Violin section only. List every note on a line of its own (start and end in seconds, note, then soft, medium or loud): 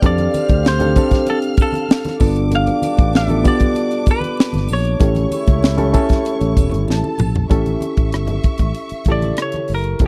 0.02 2.16 F5 medium
0.02 2.16 F6 medium
2.21 4.98 D4 medium
2.21 4.98 D6 loud
5.00 6.84 C#5 medium
5.00 6.84 C#6 medium
6.89 7.50 A4 medium
6.89 7.50 A5 medium
7.50 9.96 E5 medium
7.50 9.96 C#6 medium